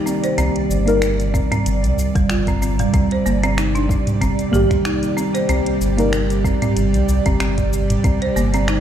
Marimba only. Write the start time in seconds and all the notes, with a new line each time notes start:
0.06 C4
0.24 C5
0.38 C4
1.34 C4
1.51 C4
2.16 G3
2.30 F4
2.48 C4
2.62 C4
2.80 G3
2.94 C4
3.12 C5
3.26 A#3
3.44 C4
3.58 D#4
3.75 D4
4.21 C4
4.53 G4
4.85 D#4
5.17 C4
5.34 C5
5.49 C4
6.45 C4
6.62 C4
7.26 C4
7.40 C4
8.04 C4
8.22 C5
8.36 A#3
8.54 C4
8.69 D#4